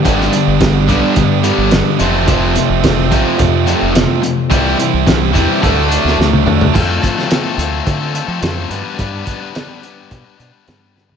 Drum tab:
CC |----------------|----------------|----------------|x---------------|
HH |x-x-x-x-x-x-x-x-|x-x-x-x-x-x-x-x-|x-x-x-x-x-x-----|--x-x-x-x-x-x-x-|
SD |-o--o-------o---|----o-------o---|----o------oo---|---oo-------o---|
T1 |----------------|----------------|-------------o--|----------------|
T2 |----------------|----------------|--------------o-|----------------|
FT |----------------|----------------|---------------o|----------------|
BD |o---o-o-o-------|o---o-o-o-------|o---o-o-o-------|o-o-----o-------|

CC |----------------|
HH |x-x-x-x-x-x-x---|
SD |----o-------o-o-|
T1 |----------------|
T2 |----------------|
FT |---------------o|
BD |o-o-----o-------|